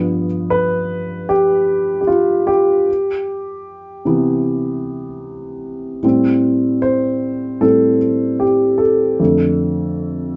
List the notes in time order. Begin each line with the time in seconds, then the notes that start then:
Already playing: G2 F3 B3
0.50 B4
1.29 G4
2.01 G4
2.07 F4
2.47 G4
4.05 C3 E3 B3
6.03 A2 G3 C4
6.82 C5
7.61 A2 G3 C4 A4
8.40 G4
8.78 A4
9.19 F2 D3 A3